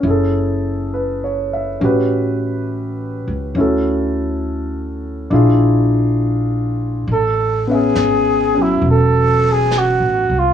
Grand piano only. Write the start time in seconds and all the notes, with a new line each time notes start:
0.00 C#4 E4
0.07 G#4 A4
0.94 B4
1.24 C#5
1.53 E5
1.80 C#4 F#4 G4
1.85 B4
3.56 C#4 E4 F#4
3.60 A4
5.30 D4 E4 F4 G#4
7.67 B3 C#4 E5
8.55 F#3 C#4